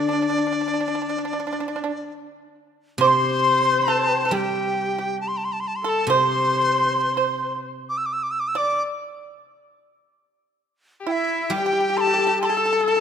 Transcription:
Already playing: guzheng D3, horsehead fiddle D4, dizi D5
0.09 pipa D4
0.13 pipa D4
0.22 pipa D4
0.29 pipa D4
0.38 pipa D4
0.47 pipa D4
0.52 pipa D4
0.61 pipa D4
0.68 pipa D4
0.74 pipa D4
0.80 pipa D4
0.88 pipa D4
0.95 pipa D4
1.02 pipa D4
1.09 pipa D4
1.18 pipa D4
1.25 pipa D4
1.33 pipa D4
1.40 pipa D4
1.47 pipa D4
1.52 pipa D4
1.60 pipa D4
1.68 pipa D4
1.76 pipa D4
1.84 pipa D4
2.98 guzheng C3, pipa C5
3.02 horsehead fiddle C5, dizi D6
3.07 dizi C6
3.88 pipa A4, dizi A5
4.11 pipa G4
4.25 pipa A4
4.31 guzheng G3, pipa G4, horsehead fiddle G4, dizi G5
4.98 pipa G4
5.21 dizi A5
5.28 dizi C6
5.37 dizi A5
5.45 dizi C6
5.52 dizi A5
5.60 dizi C6
5.67 dizi A5
5.76 dizi C6
5.83 horsehead fiddle A4, pipa A4, dizi C6
5.89 dizi A5
6.07 guzheng C3, horsehead fiddle C5, pipa C5, dizi C6
6.79 pipa A4
7.17 pipa C5
7.89 dizi D6
7.97 dizi E6
8.06 dizi D6
8.13 dizi E6
8.23 dizi D6
8.31 dizi E6
8.40 dizi D6
8.48 dizi E6
8.55 pipa D5, horsehead fiddle D5, dizi D6
11.00 erhu G4
11.07 pipa E4, horsehead fiddle E4, erhu E4, dizi G5
11.12 dizi E5
11.50 guzheng G3, pipa G4, erhu G4, horsehead fiddle G4, dizi G5
11.58 pipa G4
11.66 pipa G4
11.73 pipa G4
11.80 pipa G4
11.90 pipa G4
11.97 pipa G4, erhu A4, dizi A5 C6
12.07 pipa G4
12.14 pipa G4
12.19 pipa G4
12.27 pipa G4
12.41 horsehead fiddle A4, erhu A4, pipa A4, dizi C6
12.45 dizi A5
12.50 pipa A4
12.57 pipa A4
12.66 pipa A4
12.73 pipa A4
12.81 pipa A4
12.85 erhu A4, pipa A4, dizi A5
12.97 pipa A4

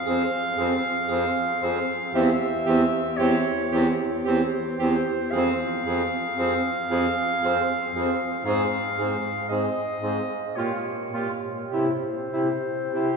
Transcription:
Already playing: clarinet F5
0.06 baritone saxophone F2, tenor saxophone C4, alto saxophone G#4
0.57 baritone saxophone F2, tenor saxophone C4, alto saxophone G#4
1.08 baritone saxophone F2, tenor saxophone C4, alto saxophone G#4
1.62 baritone saxophone F2, tenor saxophone C4, alto saxophone G#4
2.14 baritone saxophone E2, tenor saxophone C4, alto saxophone G4, clarinet E5
2.66 baritone saxophone E2, tenor saxophone C4, alto saxophone G4
3.17 baritone saxophone E2, tenor saxophone C4, alto saxophone G4, clarinet C#5
3.72 baritone saxophone E2, tenor saxophone C4, alto saxophone G4
4.24 baritone saxophone E2, tenor saxophone C4, alto saxophone G4, clarinet C5
4.79 baritone saxophone E2, tenor saxophone C4, alto saxophone G4
5.31 baritone saxophone F2, alto saxophone G#4, clarinet F5
5.37 tenor saxophone C4
5.86 baritone saxophone F2, tenor saxophone C4, alto saxophone G#4
6.37 baritone saxophone F2, tenor saxophone C4, alto saxophone G#4
6.90 baritone saxophone F2, tenor saxophone C4, alto saxophone G#4
7.42 baritone saxophone F2, tenor saxophone C4, alto saxophone G#4
7.95 baritone saxophone F2, tenor saxophone C4, alto saxophone G#4
8.45 baritone saxophone G#2, tenor saxophone C4, alto saxophone G#4, clarinet F5
8.98 baritone saxophone G#2, tenor saxophone C4, alto saxophone G#4
9.49 baritone saxophone G#2, tenor saxophone C4, alto saxophone G#4, clarinet D#5
10.01 baritone saxophone G#2, tenor saxophone C4, alto saxophone G#4
10.56 baritone saxophone A#2, tenor saxophone F4, alto saxophone G4, clarinet C#5
11.11 baritone saxophone A#2, tenor saxophone F4, alto saxophone G4
11.70 baritone saxophone C3, tenor saxophone E4, alto saxophone G4
11.74 clarinet C5
12.31 baritone saxophone C3, tenor saxophone E4, alto saxophone G4
12.91 baritone saxophone C3, tenor saxophone E4, alto saxophone G4

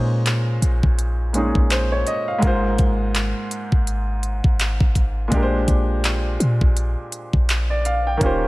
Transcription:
Already playing: 808-style bass A#2, grand piano A#2 G#3 C#4 D#4 C5
0.26 clap, closed hi-hat
0.62 808-style bass A#1, closed hi-hat
0.83 808-style bass A#1, kick
0.99 closed hi-hat
1.33 grand piano A#2 G#3 C#4 D#4, closed hi-hat
1.37 grand piano G#4
1.55 808-style bass A#1, kick
1.70 grand piano C5, clap, closed hi-hat
1.92 grand piano C#5
2.07 grand piano D#5, closed hi-hat
2.28 grand piano F5
2.39 grand piano G#2 G#3, closed hi-hat
2.43 808-style bass G#1, grand piano A#3 F4, kick
2.47 grand piano C5
2.78 808-style bass G#1, kick, closed hi-hat
3.15 clap, closed hi-hat
3.51 closed hi-hat
3.72 808-style bass G#1, kick
3.87 closed hi-hat
4.23 closed hi-hat
4.44 808-style bass G#1, kick
4.59 clap, closed hi-hat
4.80 808-style bass G#1, kick
4.95 kick, closed hi-hat
5.28 808-style bass A#1, grand piano A#2 G#3, kick, closed hi-hat
5.32 grand piano D4 G4
5.36 grand piano A#4
5.43 grand piano C5
5.68 808-style bass A#1, kick, closed hi-hat
6.04 clap, closed hi-hat
6.40 808-style bass A#2, closed hi-hat
6.61 808-style bass A#1, kick
6.77 closed hi-hat
7.12 closed hi-hat
7.33 808-style bass A#1, kick
7.49 clap, closed hi-hat
7.70 grand piano D5
7.85 grand piano F5, closed hi-hat
8.07 grand piano G5
8.17 808-style bass D#1, grand piano D#3 A#3 C#4, kick, closed hi-hat
8.22 grand piano F4 G4 C5

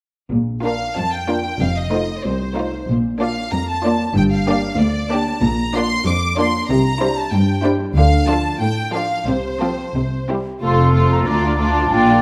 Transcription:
0.31 double bass section A#1, cello section A#2
0.64 viola section A#3 D4, violin section F4 A#4 F5
0.97 cello section F2, violin section A5
1.14 violin section G5
1.29 viola section A#3 D4, violin section F4 A#4
1.60 double bass section F1, cello section F2, violin section F5
1.78 violin section D#5
1.92 viola section A3 D#4, violin section F4 C5
2.24 cello section C2, violin section C5
2.57 viola section A3 D#4, violin section F4 C5
2.88 double bass section A#1, cello section A#2
3.21 viola section A#3 D4, violin section F4 D5 F5
3.52 cello section F2, violin section A#5
3.69 violin section A5
3.85 viola section A#3 D4, violin section F4 D5
4.16 double bass section G1, cello section G2, violin section G5
4.32 violin section F5
4.47 viola section A#3 D4, violin section G4 D5
4.79 cello section D2, violin section D5
5.11 viola section A#3 D4, violin section G4 D5 A5
5.43 double bass section A#1, cello section A#2, violin section A#5
5.75 viola section A#3 D4, violin section F4 D5 C6
6.06 cello section F2, violin section D6
6.38 viola section A#3 D4, violin section F4 D5 C6
6.69 double bass section C2, cello section C3, violin section A#5
7.01 viola section G3 D4, violin section E4 C5
7.18 violin section A5
7.32 cello section G2, violin section G5
7.64 viola section G3 D4, violin section E4 C5
7.95 double bass section D2, cello section D3, violin section F5
8.28 viola section F3 D4, violin section F4 A4 A5
8.60 cello section A2, violin section G5
8.93 viola section F3 D4, violin section F4 A4 F5
9.27 double bass section C2, cello section C3, violin section C5
9.61 viola section F3 C4, violin section F4 A4
9.95 double bass section C2, cello section C3
10.29 viola section G3 C4, violin section E4 G4
10.62 double bass section F1, cello section F2, viola section A3, clarinet F4, violin section F4 C5, oboe A4, flute section C6
10.94 viola section A3, violin section F4 C5
11.10 flute section A#5
11.26 double bass section D2, cello section D2, viola section D4, violin section F4 D5, clarinet F4, oboe D5
11.58 viola section D4, violin section F4 D5, flute section A5
11.90 double bass section A#1, cello section A#2, viola section D4, violin section F4 D5, clarinet F4, oboe D5, flute section G5

